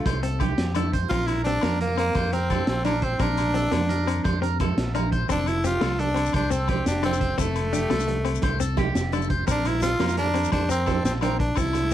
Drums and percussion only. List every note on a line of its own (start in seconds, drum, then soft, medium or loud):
0.06 kick medium
0.06 closed hi-hat medium
0.06 muted conga medium
0.06 low agogo medium
0.15 low conga medium
0.23 closed hi-hat medium
0.23 low conga soft
0.40 kick medium
0.40 closed hi-hat soft
0.40 muted conga medium
0.40 high conga medium
0.40 low conga medium
0.40 low agogo medium
0.58 snare medium
0.58 closed hi-hat medium
0.58 low conga soft
0.67 low conga medium
0.75 closed hi-hat medium
0.75 muted conga medium
0.75 high conga medium
0.75 low agogo medium
0.93 kick medium
0.93 closed hi-hat medium
1.03 low conga medium
1.10 kick medium
1.10 closed hi-hat medium
1.10 muted conga medium
1.10 low agogo medium
1.21 high conga medium
1.28 closed hi-hat medium
1.28 low conga medium
1.28 low agogo medium
1.45 closed hi-hat soft
1.45 muted conga medium
1.61 snare medium
1.61 closed hi-hat medium
1.61 high conga medium
1.61 low conga medium
1.61 low agogo medium
1.81 closed hi-hat soft
1.81 muted conga medium
1.90 low conga medium
1.97 closed hi-hat soft
1.97 low agogo medium
2.08 high conga medium
2.15 kick medium
2.15 closed hi-hat medium
2.15 muted conga medium
2.15 low agogo medium
2.26 low conga medium
2.33 closed hi-hat soft
2.33 low conga soft
2.50 kick medium
2.50 closed hi-hat soft
2.50 muted conga medium
2.50 high conga medium
2.50 low conga medium
2.50 low agogo medium
2.67 snare medium
2.67 closed hi-hat medium
2.67 low conga soft
2.85 closed hi-hat soft
2.85 muted conga medium
2.85 high conga medium
2.85 low agogo medium
3.02 kick medium
3.02 closed hi-hat soft
3.11 low conga medium
3.19 kick medium
3.19 closed hi-hat medium
3.19 muted conga medium
3.19 low agogo medium
3.29 high conga medium
3.29 low conga soft
3.37 closed hi-hat soft
3.37 low conga medium
3.37 low agogo medium
3.46 low conga soft
3.54 closed hi-hat soft
3.54 muted conga loud
3.64 low conga soft
3.72 snare medium
3.72 closed hi-hat medium
3.72 high conga medium
3.72 low conga medium
3.72 low agogo medium
3.81 low conga soft
3.89 closed hi-hat medium
3.89 muted conga medium
4.08 closed hi-hat medium
4.08 low agogo medium
4.16 high conga medium
4.25 kick medium
4.25 closed hi-hat medium
4.25 muted conga medium
4.25 low conga soft
4.25 low agogo medium
4.33 low conga medium
4.43 closed hi-hat medium
4.43 low conga soft
4.60 kick medium
4.60 closed hi-hat soft
4.60 muted conga medium
4.60 high conga medium
4.60 low conga medium
4.60 low agogo medium
4.70 low conga soft
4.78 snare medium
4.78 closed hi-hat medium
4.87 low conga medium
4.95 closed hi-hat soft
4.95 muted conga medium
4.95 high conga medium
4.95 low conga soft
4.95 low agogo medium
5.06 low conga soft
5.12 kick medium
5.12 closed hi-hat soft
5.12 low conga soft
5.23 low conga medium
5.29 kick medium
5.29 closed hi-hat medium
5.29 muted conga medium
5.29 low agogo medium
5.29 shekere medium
5.39 high conga medium
5.46 closed hi-hat soft
5.46 low conga medium
5.46 low agogo medium
5.46 shekere soft
5.64 closed hi-hat soft
5.64 muted conga medium
5.64 shekere medium
5.81 snare medium
5.81 closed hi-hat medium
5.81 high conga medium
5.81 low conga medium
5.81 low agogo medium
5.99 closed hi-hat soft
5.99 muted conga medium
6.08 low conga medium
6.16 closed hi-hat medium
6.16 low agogo medium
6.26 high conga medium
6.26 shekere medium
6.33 kick medium
6.33 closed hi-hat medium
6.33 muted conga medium
6.33 low agogo medium
6.44 low conga medium
6.51 closed hi-hat soft
6.51 low conga soft
6.51 shekere medium
6.68 kick medium
6.68 closed hi-hat soft
6.68 muted conga medium
6.68 high conga medium
6.68 low conga medium
6.68 low agogo medium
6.86 snare medium
6.86 closed hi-hat medium
6.86 low conga soft
6.86 shekere medium
6.95 low conga medium
7.03 closed hi-hat medium
7.03 muted conga medium
7.03 high conga medium
7.03 low agogo medium
7.03 shekere soft
7.13 shekere medium
7.21 kick medium
7.21 closed hi-hat medium
7.30 low conga medium
7.38 kick medium
7.38 closed hi-hat medium
7.38 muted conga medium
7.38 low agogo medium
7.38 shekere medium
7.47 high conga medium
7.56 closed hi-hat soft
7.56 low conga medium
7.56 low agogo medium
7.56 shekere soft
7.73 closed hi-hat soft
7.73 muted conga medium
7.73 shekere loud
7.90 snare medium
7.90 closed hi-hat medium
7.90 high conga medium
7.90 low conga medium
7.90 low agogo medium
8.00 shekere medium
8.08 closed hi-hat medium
8.08 muted conga medium
8.17 low conga medium
8.25 closed hi-hat soft
8.25 low agogo medium
8.34 high conga medium
8.34 shekere medium
8.42 kick medium
8.42 closed hi-hat medium
8.42 muted conga medium
8.42 low agogo medium
8.50 low conga medium
8.59 closed hi-hat soft
8.59 low conga soft
8.59 shekere loud
8.77 kick medium
8.77 closed hi-hat soft
8.77 muted conga medium
8.77 high conga loud
8.77 low conga medium
8.77 low agogo medium
8.95 snare medium
8.95 closed hi-hat medium
8.95 low conga soft
8.95 shekere loud
9.04 low conga medium
9.12 closed hi-hat medium
9.12 muted conga medium
9.12 high conga medium
9.12 low agogo medium
9.12 shekere soft
9.22 shekere medium
9.30 kick medium
9.30 closed hi-hat soft
9.40 low conga medium
9.48 kick medium
9.48 closed hi-hat medium
9.48 muted conga medium
9.48 low agogo medium
9.48 shekere loud
9.57 high conga medium
9.65 closed hi-hat medium
9.65 low conga loud
9.65 low agogo medium
9.65 shekere soft
9.82 closed hi-hat medium
9.82 muted conga loud
9.82 shekere loud
10.00 snare medium
10.00 closed hi-hat medium
10.00 high conga medium
10.00 low conga medium
10.00 low agogo medium
10.09 shekere medium
10.17 closed hi-hat medium
10.17 muted conga loud
10.27 low conga medium
10.34 closed hi-hat medium
10.34 low agogo medium
10.44 high conga medium
10.44 shekere medium
10.52 kick medium
10.52 closed hi-hat medium
10.52 muted conga loud
10.52 low agogo medium
10.62 low conga medium
10.70 closed hi-hat medium
10.70 low conga soft
10.70 shekere loud
10.86 kick medium
10.86 closed hi-hat soft
10.86 muted conga loud
10.86 high conga medium
10.86 low conga medium
10.86 low agogo medium
11.05 snare medium
11.05 closed hi-hat medium
11.05 low conga soft
11.05 shekere medium
11.13 low conga medium
11.21 closed hi-hat medium
11.21 muted conga loud
11.21 high conga medium
11.21 low agogo medium
11.21 shekere soft
11.40 kick medium
11.40 closed hi-hat soft
11.49 low conga medium
11.56 kick medium
11.56 closed hi-hat medium
11.56 muted conga medium
11.56 low agogo medium
11.56 shekere medium
11.66 high conga medium
11.66 low conga soft
11.66 shekere soft
11.73 closed hi-hat soft
11.73 low conga medium
11.73 low agogo medium
11.73 shekere soft